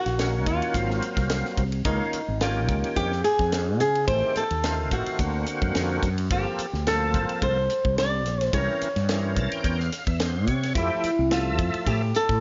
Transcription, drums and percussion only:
0.06 snare soft
0.06 ride medium
0.19 snare medium
0.19 hi-hat pedal medium
0.19 ride medium
0.46 kick medium
0.46 hi-hat pedal medium
0.46 ride medium
0.62 ride medium
0.74 kick medium
0.74 hi-hat pedal medium
0.74 ride medium
0.90 snare soft
1.02 hi-hat pedal medium
1.02 ride medium
1.17 kick medium
1.17 snare soft
1.17 ride medium
1.29 snare loud
1.29 hi-hat pedal medium
1.29 ride medium
1.45 snare soft
1.57 kick medium
1.57 hi-hat pedal medium
1.57 ride medium
1.72 ride medium
1.85 kick loud
1.85 hi-hat pedal medium
1.85 ride medium
2.13 hi-hat pedal medium
2.13 ride medium
2.41 snare loud
2.41 hi-hat pedal medium
2.41 ride medium
2.68 kick medium
2.68 hi-hat pedal medium
2.68 ride medium
2.84 ride medium
2.96 kick medium
2.96 hi-hat pedal medium
2.96 ride medium
3.12 snare soft
3.24 snare soft
3.24 hi-hat pedal medium
3.24 ride medium
3.39 kick medium
3.39 snare soft
3.52 snare loud
3.52 hi-hat pedal medium
3.52 ride medium
3.80 snare soft
3.80 hi-hat pedal medium
3.80 ride medium
3.95 ride medium
4.08 kick loud
4.08 hi-hat pedal medium
4.08 ride medium
4.36 hi-hat pedal medium
4.36 ride medium
4.50 ride medium
4.63 snare loud
4.63 hi-hat pedal medium
4.63 ride medium
4.91 kick medium
4.91 hi-hat pedal medium
4.91 ride medium
5.06 ride medium
5.19 kick medium
5.19 hi-hat pedal medium
5.19 ride medium
5.46 hi-hat pedal medium
5.46 ride medium
5.62 kick medium
5.62 ride medium
5.75 snare medium
5.75 hi-hat pedal medium
5.75 ride medium
6.03 kick medium
6.03 hi-hat pedal medium
6.03 ride medium
6.18 ride medium
6.31 kick loud
6.31 hi-hat pedal medium
6.31 ride medium
6.59 hi-hat pedal medium
6.59 ride medium
6.74 snare soft
6.87 snare medium
6.87 hi-hat pedal medium
6.87 ride medium
7.14 kick medium
7.14 hi-hat pedal medium
7.14 ride medium
7.29 ride medium
7.42 kick medium
7.42 hi-hat pedal medium
7.42 ride medium
7.70 hi-hat pedal medium
7.70 ride medium
7.85 kick medium
7.98 snare loud
7.98 hi-hat pedal medium
7.98 ride medium
8.26 snare soft
8.26 hi-hat pedal medium
8.26 ride medium
8.41 snare soft
8.41 ride medium
8.53 kick loud
8.53 hi-hat pedal medium
8.53 ride medium
8.81 hi-hat pedal medium
8.81 ride medium
8.96 snare soft
8.96 ride medium
9.09 snare loud
9.09 hi-hat pedal medium
9.09 ride medium
9.36 kick medium
9.36 hi-hat pedal medium
9.36 ride medium
9.52 ride medium
9.64 kick medium
9.64 hi-hat pedal medium
9.64 ride medium
9.80 snare soft
9.92 snare soft
9.92 hi-hat pedal medium
9.92 ride medium
10.07 kick medium
10.07 ride medium
10.20 snare loud
10.20 hi-hat pedal medium
10.20 ride medium
10.48 kick medium
10.48 hi-hat pedal medium
10.48 ride medium
10.63 snare soft
10.63 ride medium
10.75 kick loud
10.75 hi-hat pedal medium
10.75 ride medium
11.04 hi-hat pedal medium
11.04 ride medium
11.31 snare loud
11.31 hi-hat pedal medium
11.31 ride medium
11.59 kick medium
11.59 hi-hat pedal medium
11.59 ride medium
11.74 ride medium
11.86 kick medium
11.86 hi-hat pedal medium
11.86 ride medium
12.14 snare soft
12.14 hi-hat pedal medium
12.14 ride medium
12.29 kick medium
12.29 snare soft

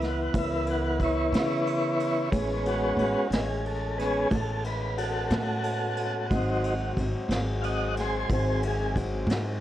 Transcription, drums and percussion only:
0.01 snare soft
0.01 ride soft
0.34 kick loud
0.34 ride medium
0.67 ride soft
1.00 kick medium
1.00 ride medium
1.33 snare loud
1.33 ride medium
1.67 ride medium
2.00 ride medium
2.32 kick loud
2.32 ride medium
2.66 ride medium
2.99 ride medium
3.32 snare loud
3.32 ride medium
3.65 ride medium
3.99 snare soft
3.99 ride medium
4.31 kick loud
4.31 ride medium
4.64 ride medium
4.98 ride medium
5.30 snare loud
5.30 ride medium
5.64 ride medium
5.97 ride medium
6.31 kick loud
6.31 ride medium
6.64 ride medium
6.97 kick medium
6.97 ride medium
7.30 snare loud
7.30 ride medium
7.63 ride medium
7.97 snare soft
7.97 ride medium
8.29 kick loud
8.29 ride medium
8.63 ride medium
8.96 kick medium
8.96 ride medium
9.29 snare loud
9.29 ride medium

